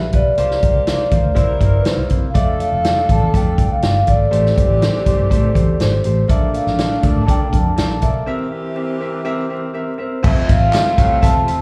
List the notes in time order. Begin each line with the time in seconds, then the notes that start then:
Already playing: E5
0.12 B1 G3 F4 B4 D5, kick, closed hi-hat
0.37 C2 C3 A#3 F4 G4 C5, closed hi-hat
0.51 snare
0.62 A#3 F4 C5, kick, closed hi-hat
0.75 C2
0.86 A#3 F4 C5, snare, closed hi-hat
1.11 E2 A#3 F4 C5, kick, closed hi-hat
1.24 D2
1.35 C2 G3 A#3 E4 A#4 C5, kick, closed hi-hat
1.61 G1 A#3 E4 C5, kick, closed hi-hat
1.80 B4
1.85 A#3 E4 C5, snare, closed hi-hat
1.97 C2
2.09 C3 A#3 E4 C5, kick, closed hi-hat
2.30 A3 F5
2.34 F1 F3 D4 F4 A4 D5 E5, kick, closed hi-hat
2.59 A3 F4 D5 F5, closed hi-hat
2.72 F1
2.84 A3 F4 D5, snare, closed hi-hat
3.09 A1 A3 F4 D5 A5, kick, closed hi-hat
3.23 E2
3.34 F2 A3 F4 D5 G5, kick, closed hi-hat
3.58 C2 A3 F4 D5, kick, closed hi-hat
3.71 F5
3.82 G1 A3 F4 D5, snare, closed hi-hat
4.07 G#1 A3 F4 D5, kick, closed hi-hat
4.31 A1 E3 A3 C4 G4 C5, closed hi-hat
4.46 snare
4.56 A3 G4 C5, kick, closed hi-hat
4.69 A1
4.80 A3 G4 C5, snare, closed hi-hat
5.06 C2 A3 G4 C5, kick, closed hi-hat
5.19 G2
5.30 A2 A3 G4 C5, kick, closed hi-hat
5.54 E2 A3 G4 C5, kick, closed hi-hat
5.80 G#1 A3 G4 C5, snare, closed hi-hat
6.04 A1 A3 G4 C5, closed hi-hat
6.28 A#1 A#2 A3 A#3 D4 A4 D5 E5, kick, closed hi-hat
6.53 A#3 A4 D5 F5, closed hi-hat
6.67 A#1, snare
6.78 A#3 A4 D5, snare, closed hi-hat
7.03 D2 A#3 A4 D5, kick, closed hi-hat
7.16 A2
7.22 A#3 A5
7.26 A#2 A4 D5 G5, kick, closed hi-hat
7.52 F2 A#3 A4 D5 A5, kick, closed hi-hat
7.76 A#1 A#3 A4 D5, snare, closed hi-hat
8.01 B1 A#3 A4 D5 E5, kick, closed hi-hat
8.26 E3 C4 G4 A#4 E5
8.51 C4 A#4 E5
8.76 C4 A#4 E5
9.00 C4 A#4 E5
9.25 C4 A#4 E5
9.49 C4 A#4 E5
9.74 C4 A#4 E5
9.98 C4 A#4 C5 E5
10.23 F1 F2 C3 A3 C4 F4 A4 E5, kick, crash, tambourine
10.47 A1 C4 F4 A4 E5 F5, kick, closed hi-hat, tambourine
10.72 C4 F4 A4 E5, snare, clap, closed hi-hat, tambourine
10.86 muted fingered electric bass stroke
10.97 C2 A2 C4 F4 A4 E5, kick, closed hi-hat, tambourine
11.21 E1 C4 F4 A4 E5 A5, kick, closed hi-hat, tambourine
11.47 C4 F4 A4 E5, closed hi-hat